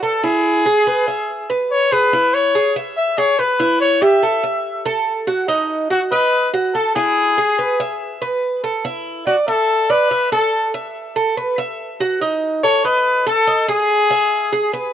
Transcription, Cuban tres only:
0, 0, Header, 1, 2, 480
1, 0, Start_track
1, 0, Tempo, 420463
1, 508, Time_signature, 4, 2, 24, 8
1, 17044, End_track
2, 0, Start_track
2, 0, Title_t, "Cuban tres"
2, 0, Program_c, 0, 25
2, 30, Note_on_c, 0, 69, 62
2, 262, Note_off_c, 0, 69, 0
2, 269, Note_on_c, 0, 64, 80
2, 734, Note_off_c, 0, 64, 0
2, 751, Note_on_c, 0, 68, 76
2, 982, Note_off_c, 0, 68, 0
2, 991, Note_on_c, 0, 71, 58
2, 1222, Note_off_c, 0, 71, 0
2, 1229, Note_on_c, 0, 76, 64
2, 1693, Note_off_c, 0, 76, 0
2, 1710, Note_on_c, 0, 71, 66
2, 2174, Note_off_c, 0, 71, 0
2, 2194, Note_on_c, 0, 68, 70
2, 2423, Note_off_c, 0, 68, 0
2, 2431, Note_on_c, 0, 64, 73
2, 2894, Note_off_c, 0, 64, 0
2, 2912, Note_on_c, 0, 68, 63
2, 3141, Note_off_c, 0, 68, 0
2, 3151, Note_on_c, 0, 76, 68
2, 3613, Note_off_c, 0, 76, 0
2, 3629, Note_on_c, 0, 68, 70
2, 3860, Note_off_c, 0, 68, 0
2, 3869, Note_on_c, 0, 71, 60
2, 4100, Note_off_c, 0, 71, 0
2, 4106, Note_on_c, 0, 64, 86
2, 4570, Note_off_c, 0, 64, 0
2, 4586, Note_on_c, 0, 67, 69
2, 4818, Note_off_c, 0, 67, 0
2, 4825, Note_on_c, 0, 69, 62
2, 5057, Note_off_c, 0, 69, 0
2, 5063, Note_on_c, 0, 76, 67
2, 5528, Note_off_c, 0, 76, 0
2, 5543, Note_on_c, 0, 69, 75
2, 6008, Note_off_c, 0, 69, 0
2, 6020, Note_on_c, 0, 66, 71
2, 6254, Note_off_c, 0, 66, 0
2, 6259, Note_on_c, 0, 63, 80
2, 6726, Note_off_c, 0, 63, 0
2, 6740, Note_on_c, 0, 66, 60
2, 6973, Note_off_c, 0, 66, 0
2, 6982, Note_on_c, 0, 75, 70
2, 7447, Note_off_c, 0, 75, 0
2, 7461, Note_on_c, 0, 66, 72
2, 7694, Note_off_c, 0, 66, 0
2, 7703, Note_on_c, 0, 69, 60
2, 7935, Note_off_c, 0, 69, 0
2, 7944, Note_on_c, 0, 64, 80
2, 8408, Note_off_c, 0, 64, 0
2, 8421, Note_on_c, 0, 68, 69
2, 8654, Note_off_c, 0, 68, 0
2, 8661, Note_on_c, 0, 71, 64
2, 8893, Note_off_c, 0, 71, 0
2, 8902, Note_on_c, 0, 76, 70
2, 9367, Note_off_c, 0, 76, 0
2, 9380, Note_on_c, 0, 71, 73
2, 9846, Note_off_c, 0, 71, 0
2, 9860, Note_on_c, 0, 69, 64
2, 10093, Note_off_c, 0, 69, 0
2, 10099, Note_on_c, 0, 64, 78
2, 10565, Note_off_c, 0, 64, 0
2, 10579, Note_on_c, 0, 74, 69
2, 10812, Note_off_c, 0, 74, 0
2, 10820, Note_on_c, 0, 76, 75
2, 11285, Note_off_c, 0, 76, 0
2, 11298, Note_on_c, 0, 74, 72
2, 11532, Note_off_c, 0, 74, 0
2, 11541, Note_on_c, 0, 76, 55
2, 11773, Note_off_c, 0, 76, 0
2, 11781, Note_on_c, 0, 69, 77
2, 12246, Note_off_c, 0, 69, 0
2, 12262, Note_on_c, 0, 76, 73
2, 12727, Note_off_c, 0, 76, 0
2, 12741, Note_on_c, 0, 69, 70
2, 12973, Note_off_c, 0, 69, 0
2, 12984, Note_on_c, 0, 71, 63
2, 13215, Note_off_c, 0, 71, 0
2, 13221, Note_on_c, 0, 76, 65
2, 13686, Note_off_c, 0, 76, 0
2, 13704, Note_on_c, 0, 66, 75
2, 13935, Note_off_c, 0, 66, 0
2, 13944, Note_on_c, 0, 63, 79
2, 14408, Note_off_c, 0, 63, 0
2, 14428, Note_on_c, 0, 69, 62
2, 14658, Note_off_c, 0, 69, 0
2, 14663, Note_on_c, 0, 75, 69
2, 15128, Note_off_c, 0, 75, 0
2, 15143, Note_on_c, 0, 69, 77
2, 15375, Note_off_c, 0, 69, 0
2, 15381, Note_on_c, 0, 75, 61
2, 15615, Note_off_c, 0, 75, 0
2, 15621, Note_on_c, 0, 68, 77
2, 16088, Note_off_c, 0, 68, 0
2, 16102, Note_on_c, 0, 76, 72
2, 16569, Note_off_c, 0, 76, 0
2, 16581, Note_on_c, 0, 68, 72
2, 16815, Note_off_c, 0, 68, 0
2, 16820, Note_on_c, 0, 71, 63
2, 17044, Note_off_c, 0, 71, 0
2, 17044, End_track
0, 0, End_of_file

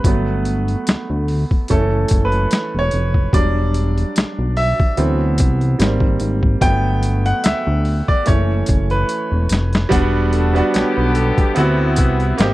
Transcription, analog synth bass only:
0, 0, Header, 1, 2, 480
1, 0, Start_track
1, 0, Tempo, 821918
1, 25, Time_signature, 4, 2, 24, 8
1, 7321, End_track
2, 0, Start_track
2, 0, Title_t, "Analog synth bass"
2, 0, Program_c, 0, 38
2, 30, Note_on_c, 0, 31, 97
2, 444, Note_off_c, 0, 31, 0
2, 513, Note_on_c, 0, 38, 41
2, 563, Note_off_c, 0, 38, 0
2, 642, Note_on_c, 0, 38, 90
2, 847, Note_off_c, 0, 38, 0
2, 1001, Note_on_c, 0, 30, 109
2, 1202, Note_off_c, 0, 30, 0
2, 1239, Note_on_c, 0, 30, 90
2, 1441, Note_off_c, 0, 30, 0
2, 1603, Note_on_c, 0, 28, 81
2, 1694, Note_off_c, 0, 28, 0
2, 1715, Note_on_c, 0, 29, 76
2, 1918, Note_off_c, 0, 29, 0
2, 1948, Note_on_c, 0, 28, 104
2, 2363, Note_off_c, 0, 28, 0
2, 2434, Note_on_c, 0, 35, 47
2, 2484, Note_off_c, 0, 35, 0
2, 2561, Note_on_c, 0, 35, 80
2, 2767, Note_off_c, 0, 35, 0
2, 2909, Note_on_c, 0, 38, 106
2, 3159, Note_on_c, 0, 36, 89
2, 3167, Note_off_c, 0, 38, 0
2, 3361, Note_off_c, 0, 36, 0
2, 3386, Note_on_c, 0, 32, 109
2, 3499, Note_off_c, 0, 32, 0
2, 3512, Note_on_c, 0, 32, 75
2, 3609, Note_off_c, 0, 32, 0
2, 3625, Note_on_c, 0, 32, 85
2, 3833, Note_off_c, 0, 32, 0
2, 3867, Note_on_c, 0, 31, 88
2, 4283, Note_off_c, 0, 31, 0
2, 4352, Note_on_c, 0, 38, 47
2, 4403, Note_off_c, 0, 38, 0
2, 4479, Note_on_c, 0, 38, 97
2, 4686, Note_off_c, 0, 38, 0
2, 4842, Note_on_c, 0, 30, 94
2, 5043, Note_off_c, 0, 30, 0
2, 5079, Note_on_c, 0, 30, 85
2, 5281, Note_off_c, 0, 30, 0
2, 5441, Note_on_c, 0, 28, 81
2, 5533, Note_off_c, 0, 28, 0
2, 5552, Note_on_c, 0, 29, 69
2, 5757, Note_off_c, 0, 29, 0
2, 5790, Note_on_c, 0, 28, 103
2, 6204, Note_off_c, 0, 28, 0
2, 6280, Note_on_c, 0, 35, 43
2, 6328, Note_off_c, 0, 35, 0
2, 6410, Note_on_c, 0, 35, 81
2, 6612, Note_off_c, 0, 35, 0
2, 6759, Note_on_c, 0, 38, 100
2, 7004, Note_on_c, 0, 36, 94
2, 7012, Note_off_c, 0, 38, 0
2, 7204, Note_off_c, 0, 36, 0
2, 7239, Note_on_c, 0, 32, 119
2, 7321, Note_off_c, 0, 32, 0
2, 7321, End_track
0, 0, End_of_file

